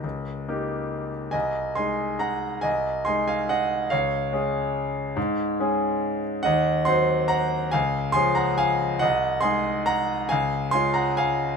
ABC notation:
X:1
M:3/4
L:1/8
Q:1/4=139
K:Db
V:1 name="Grand piano"
[Be]4- [Be] z | [ea]2 [ac']2 [gb]2 | [ea]2 [ac'] [fa] [eg]2 | [df]6- |
[df]4- [df] z | [eg]2 [gc']2 [gb]2 | [fa]2 [ac'] [gb] [fa]2 | [eg]2 [ac']2 [gb]2 |
[fa]2 [ac'] [gb] [fa]2 |]
V:2 name="Grand piano"
D,,2 [B,E=G]4 | C,,2 [A,EA]4 | C,,2 [A,EA]4 | D,,2 [A,DA]4 |
A,,2 [A,DA]4 | E,,2 [G,Cc]4 | D,,2 [F,DA]4 | C,,2 [A,EA]4 |
D,,2 [A,DF]4 |]